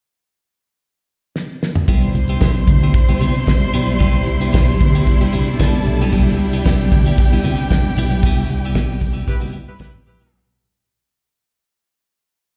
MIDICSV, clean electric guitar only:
0, 0, Header, 1, 3, 480
1, 0, Start_track
1, 0, Tempo, 530504
1, 1704, Time_signature, 4, 2, 24, 8
1, 5542, Tempo, 524934
1, 11432, End_track
2, 0, Start_track
2, 0, Title_t, "Clean electric guitar"
2, 0, Program_c, 0, 27
2, 1706, Note_on_c, 0, 59, 75
2, 1708, Note_on_c, 0, 64, 71
2, 1711, Note_on_c, 0, 67, 78
2, 1927, Note_off_c, 0, 59, 0
2, 1928, Note_off_c, 0, 64, 0
2, 1929, Note_off_c, 0, 67, 0
2, 2074, Note_on_c, 0, 64, 54
2, 2074, Note_on_c, 0, 67, 69
2, 2079, Note_on_c, 0, 59, 57
2, 2176, Note_off_c, 0, 59, 0
2, 2187, Note_on_c, 0, 59, 75
2, 2188, Note_off_c, 0, 64, 0
2, 2191, Note_off_c, 0, 67, 0
2, 2198, Note_on_c, 0, 64, 80
2, 2202, Note_on_c, 0, 67, 92
2, 2301, Note_off_c, 0, 67, 0
2, 2306, Note_off_c, 0, 64, 0
2, 2355, Note_off_c, 0, 59, 0
2, 2559, Note_on_c, 0, 67, 50
2, 2564, Note_on_c, 0, 64, 56
2, 2566, Note_on_c, 0, 59, 52
2, 2657, Note_off_c, 0, 59, 0
2, 2657, Note_off_c, 0, 64, 0
2, 2662, Note_off_c, 0, 67, 0
2, 2794, Note_on_c, 0, 67, 76
2, 2799, Note_on_c, 0, 64, 63
2, 2802, Note_on_c, 0, 59, 67
2, 2890, Note_off_c, 0, 59, 0
2, 2896, Note_off_c, 0, 67, 0
2, 2899, Note_off_c, 0, 64, 0
2, 2901, Note_on_c, 0, 59, 70
2, 2907, Note_on_c, 0, 67, 79
2, 2910, Note_on_c, 0, 64, 65
2, 3022, Note_off_c, 0, 67, 0
2, 3033, Note_off_c, 0, 64, 0
2, 3038, Note_off_c, 0, 59, 0
2, 3381, Note_on_c, 0, 59, 82
2, 3388, Note_on_c, 0, 64, 79
2, 3391, Note_on_c, 0, 67, 86
2, 3500, Note_off_c, 0, 67, 0
2, 3508, Note_off_c, 0, 64, 0
2, 3552, Note_off_c, 0, 59, 0
2, 3610, Note_on_c, 0, 59, 77
2, 3621, Note_on_c, 0, 67, 87
2, 3622, Note_on_c, 0, 64, 74
2, 3840, Note_off_c, 0, 59, 0
2, 3845, Note_off_c, 0, 67, 0
2, 3846, Note_off_c, 0, 64, 0
2, 3991, Note_on_c, 0, 67, 67
2, 3993, Note_on_c, 0, 64, 65
2, 3999, Note_on_c, 0, 59, 49
2, 4088, Note_off_c, 0, 59, 0
2, 4095, Note_off_c, 0, 64, 0
2, 4097, Note_off_c, 0, 67, 0
2, 4099, Note_on_c, 0, 59, 80
2, 4106, Note_on_c, 0, 64, 75
2, 4108, Note_on_c, 0, 67, 91
2, 4229, Note_off_c, 0, 67, 0
2, 4237, Note_off_c, 0, 64, 0
2, 4271, Note_off_c, 0, 59, 0
2, 4478, Note_on_c, 0, 67, 65
2, 4481, Note_on_c, 0, 64, 53
2, 4487, Note_on_c, 0, 59, 45
2, 4574, Note_off_c, 0, 59, 0
2, 4581, Note_off_c, 0, 64, 0
2, 4585, Note_off_c, 0, 67, 0
2, 4715, Note_on_c, 0, 67, 85
2, 4719, Note_on_c, 0, 64, 65
2, 4722, Note_on_c, 0, 59, 60
2, 4806, Note_off_c, 0, 59, 0
2, 4810, Note_off_c, 0, 64, 0
2, 4817, Note_off_c, 0, 67, 0
2, 4817, Note_on_c, 0, 59, 62
2, 4821, Note_on_c, 0, 64, 68
2, 4827, Note_on_c, 0, 67, 70
2, 4950, Note_off_c, 0, 67, 0
2, 4955, Note_off_c, 0, 59, 0
2, 4955, Note_off_c, 0, 64, 0
2, 5064, Note_on_c, 0, 64, 95
2, 5065, Note_on_c, 0, 59, 82
2, 5074, Note_on_c, 0, 67, 93
2, 5194, Note_off_c, 0, 67, 0
2, 5196, Note_off_c, 0, 64, 0
2, 5232, Note_off_c, 0, 59, 0
2, 5440, Note_on_c, 0, 67, 69
2, 5443, Note_on_c, 0, 64, 71
2, 5452, Note_on_c, 0, 59, 62
2, 5529, Note_off_c, 0, 59, 0
2, 5535, Note_off_c, 0, 64, 0
2, 5539, Note_off_c, 0, 67, 0
2, 5540, Note_on_c, 0, 59, 74
2, 5546, Note_on_c, 0, 64, 78
2, 5550, Note_on_c, 0, 67, 75
2, 5763, Note_off_c, 0, 59, 0
2, 5766, Note_off_c, 0, 64, 0
2, 5769, Note_off_c, 0, 67, 0
2, 5914, Note_on_c, 0, 64, 56
2, 5916, Note_on_c, 0, 67, 59
2, 5921, Note_on_c, 0, 59, 46
2, 6026, Note_off_c, 0, 59, 0
2, 6032, Note_off_c, 0, 64, 0
2, 6035, Note_off_c, 0, 67, 0
2, 6037, Note_on_c, 0, 59, 76
2, 6043, Note_on_c, 0, 64, 92
2, 6047, Note_on_c, 0, 67, 97
2, 6156, Note_off_c, 0, 67, 0
2, 6161, Note_off_c, 0, 64, 0
2, 6199, Note_off_c, 0, 59, 0
2, 6398, Note_on_c, 0, 64, 50
2, 6402, Note_on_c, 0, 67, 54
2, 6412, Note_on_c, 0, 59, 46
2, 6505, Note_off_c, 0, 59, 0
2, 6510, Note_off_c, 0, 64, 0
2, 6514, Note_off_c, 0, 67, 0
2, 6639, Note_on_c, 0, 67, 78
2, 6644, Note_on_c, 0, 64, 64
2, 6646, Note_on_c, 0, 59, 57
2, 6734, Note_off_c, 0, 59, 0
2, 6738, Note_off_c, 0, 64, 0
2, 6744, Note_off_c, 0, 67, 0
2, 6745, Note_on_c, 0, 59, 67
2, 6749, Note_on_c, 0, 64, 58
2, 6755, Note_on_c, 0, 67, 70
2, 6880, Note_off_c, 0, 67, 0
2, 6881, Note_off_c, 0, 59, 0
2, 6883, Note_off_c, 0, 64, 0
2, 7241, Note_on_c, 0, 59, 88
2, 7245, Note_on_c, 0, 64, 101
2, 7248, Note_on_c, 0, 67, 92
2, 7367, Note_off_c, 0, 67, 0
2, 7370, Note_off_c, 0, 64, 0
2, 7402, Note_off_c, 0, 59, 0
2, 7490, Note_on_c, 0, 59, 79
2, 7494, Note_on_c, 0, 64, 87
2, 7497, Note_on_c, 0, 67, 99
2, 7700, Note_off_c, 0, 59, 0
2, 7702, Note_off_c, 0, 64, 0
2, 7704, Note_off_c, 0, 67, 0
2, 7850, Note_on_c, 0, 67, 71
2, 7853, Note_on_c, 0, 64, 62
2, 7860, Note_on_c, 0, 59, 52
2, 7935, Note_off_c, 0, 59, 0
2, 7942, Note_off_c, 0, 64, 0
2, 7944, Note_off_c, 0, 67, 0
2, 7946, Note_on_c, 0, 59, 86
2, 7953, Note_on_c, 0, 64, 86
2, 7955, Note_on_c, 0, 67, 103
2, 8071, Note_off_c, 0, 64, 0
2, 8073, Note_off_c, 0, 67, 0
2, 8115, Note_off_c, 0, 59, 0
2, 8290, Note_on_c, 0, 67, 63
2, 8293, Note_on_c, 0, 64, 60
2, 8298, Note_on_c, 0, 59, 50
2, 8397, Note_off_c, 0, 59, 0
2, 8397, Note_off_c, 0, 64, 0
2, 8407, Note_off_c, 0, 67, 0
2, 8538, Note_on_c, 0, 67, 70
2, 8546, Note_on_c, 0, 64, 65
2, 8550, Note_on_c, 0, 59, 59
2, 8642, Note_off_c, 0, 59, 0
2, 8648, Note_off_c, 0, 64, 0
2, 8650, Note_off_c, 0, 67, 0
2, 8653, Note_on_c, 0, 59, 57
2, 8659, Note_on_c, 0, 64, 61
2, 8661, Note_on_c, 0, 67, 67
2, 8779, Note_off_c, 0, 67, 0
2, 8785, Note_off_c, 0, 64, 0
2, 8794, Note_off_c, 0, 59, 0
2, 8893, Note_on_c, 0, 59, 87
2, 8896, Note_on_c, 0, 64, 86
2, 8907, Note_on_c, 0, 67, 89
2, 9014, Note_off_c, 0, 67, 0
2, 9018, Note_off_c, 0, 64, 0
2, 9068, Note_off_c, 0, 59, 0
2, 9267, Note_on_c, 0, 67, 63
2, 9273, Note_on_c, 0, 59, 61
2, 9276, Note_on_c, 0, 64, 65
2, 9391, Note_off_c, 0, 67, 0
2, 9394, Note_off_c, 0, 59, 0
2, 9395, Note_off_c, 0, 64, 0
2, 11432, End_track
3, 0, Start_track
3, 0, Title_t, "Muted clean electric guitar strokes"
3, 1943, Note_on_c, 9, 29, 43
3, 2034, Note_off_c, 9, 29, 0
3, 2311, Note_on_c, 9, 29, 43
3, 2402, Note_off_c, 9, 29, 0
3, 2419, Note_on_c, 9, 29, 39
3, 2510, Note_off_c, 9, 29, 0
3, 3033, Note_on_c, 9, 29, 46
3, 3124, Note_off_c, 9, 29, 0
3, 3265, Note_on_c, 9, 29, 39
3, 3355, Note_off_c, 9, 29, 0
3, 3511, Note_on_c, 9, 29, 47
3, 3601, Note_off_c, 9, 29, 0
3, 3852, Note_on_c, 9, 29, 34
3, 3942, Note_off_c, 9, 29, 0
3, 4240, Note_on_c, 9, 29, 45
3, 4331, Note_off_c, 9, 29, 0
3, 4357, Note_on_c, 9, 29, 39
3, 4448, Note_off_c, 9, 29, 0
3, 4585, Note_on_c, 9, 29, 39
3, 4675, Note_off_c, 9, 29, 0
3, 4961, Note_on_c, 9, 29, 41
3, 5051, Note_off_c, 9, 29, 0
3, 5205, Note_on_c, 9, 29, 49
3, 5295, Note_off_c, 9, 29, 0
3, 5309, Note_on_c, 9, 29, 50
3, 5400, Note_off_c, 9, 29, 0
3, 5784, Note_on_c, 9, 29, 42
3, 5875, Note_off_c, 9, 29, 0
3, 6167, Note_on_c, 9, 29, 42
3, 6258, Note_off_c, 9, 29, 0
3, 6275, Note_on_c, 9, 29, 43
3, 6366, Note_off_c, 9, 29, 0
3, 6516, Note_on_c, 9, 29, 43
3, 6607, Note_off_c, 9, 29, 0
3, 6891, Note_on_c, 9, 29, 49
3, 6983, Note_off_c, 9, 29, 0
3, 7124, Note_on_c, 9, 29, 46
3, 7215, Note_off_c, 9, 29, 0
3, 7378, Note_on_c, 9, 29, 53
3, 7470, Note_off_c, 9, 29, 0
3, 7716, Note_on_c, 9, 29, 37
3, 7808, Note_off_c, 9, 29, 0
3, 8082, Note_on_c, 9, 29, 35
3, 8174, Note_off_c, 9, 29, 0
3, 8175, Note_on_c, 9, 29, 34
3, 8266, Note_off_c, 9, 29, 0
3, 8408, Note_on_c, 9, 29, 36
3, 8499, Note_off_c, 9, 29, 0
3, 9025, Note_on_c, 9, 29, 50
3, 9117, Note_off_c, 9, 29, 0
3, 9140, Note_on_c, 9, 29, 42
3, 9231, Note_off_c, 9, 29, 0
3, 11432, End_track
0, 0, End_of_file